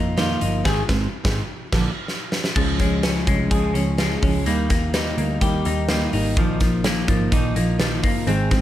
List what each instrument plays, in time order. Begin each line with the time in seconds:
Already playing: picked electric bass F2, clean electric guitar D#3 A#3 F4, steel-string acoustic guitar F3 A#3 D#4
0.16 steel-string acoustic guitar A#2 D#3 F3 A#3 D#4, clean electric guitar F4, snare, closed hi-hat
0.40 picked electric bass G1, steel-string acoustic guitar F3 A#3 D#4, closed hi-hat
0.64 picked electric bass G#1, steel-string acoustic guitar G#2 D#3 G#3 C4 D#4, clean electric guitar G#4, kick, snare, crash
0.88 picked electric bass G#1, steel-string acoustic guitar G#3 C4 D#4, kick, snare
1.24 picked electric bass G#1, steel-string acoustic guitar G#2 D#3 G#3 C4 D#4, kick, snare
1.72 picked electric bass A#1, steel-string acoustic guitar D3 F3 A#3 D4, kick, snare, crash
2.08 snare
2.32 snare
2.44 snare
2.56 picked electric bass C#2, steel-string acoustic guitar C#3 F3 G#3 C#4, kick, crash
2.79 steel-string acoustic guitar F3 G#3 C#4, kick, snare, closed hi-hat
3.03 steel-string acoustic guitar C#3 F3 G#3 C#4, snare, closed hi-hat
3.27 picked electric bass C2, steel-string acoustic guitar F3 G#3 C#4, kick, closed hi-hat
3.51 picked electric bass C#2, steel-string acoustic guitar C#3 F3 G#3 C#4, clean electric guitar G#4, kick, closed hi-hat
3.75 picked electric bass C#2, steel-string acoustic guitar F3 G#3 C#4, closed hi-hat
3.98 steel-string acoustic guitar C#3 F3 G#3 C#4, snare, closed hi-hat
4.22 picked electric bass C#2, steel-string acoustic guitar F3 G#3 C#4, kick, open hi-hat
4.45 picked electric bass D#2, steel-string acoustic guitar D#3 G3 A#3 D#4, closed hi-hat
4.69 steel-string acoustic guitar G3 A#3 D#4, kick, snare, closed hi-hat
4.94 steel-string acoustic guitar D#3 G3 A#3 D#4, snare, closed hi-hat
5.18 picked electric bass D2, steel-string acoustic guitar G3 A#3 D#4, closed hi-hat
5.41 picked electric bass D#2, steel-string acoustic guitar D#3 G3 A#3 D#4, clean electric guitar G4, kick, closed hi-hat
5.65 picked electric bass D#2, steel-string acoustic guitar G3 A#3 D#4, closed hi-hat
5.88 steel-string acoustic guitar D#3 G3 A#3 D#4, snare, closed hi-hat
6.13 picked electric bass G#1, steel-string acoustic guitar G3 A#3 D#4, open hi-hat
6.37 picked electric bass A#1, steel-string acoustic guitar A#2 D#3 F3 A#3 D#4, kick, closed hi-hat
6.60 steel-string acoustic guitar F3 A#3 D#4, kick, snare, closed hi-hat
6.84 steel-string acoustic guitar D#3 F3 A#3 D#4, snare, closed hi-hat
7.08 picked electric bass G#1, steel-string acoustic guitar F3 A#3 D#4, kick, closed hi-hat
7.32 picked electric bass A#1, steel-string acoustic guitar A#2 D#3 F3 A#3 D#4, kick, closed hi-hat
7.56 picked electric bass A#1, steel-string acoustic guitar F3 A#3 D#4, closed hi-hat
7.79 steel-string acoustic guitar D#3 F3 A#3 D#4, snare, closed hi-hat
8.03 picked electric bass G1, steel-string acoustic guitar F3 A#3 D#4, kick, open hi-hat
8.27 picked electric bass G#1, steel-string acoustic guitar G#2 D#3 G#3 C4 D#4, closed hi-hat
8.51 steel-string acoustic guitar G#3 C4 D#4, kick, snare, closed hi-hat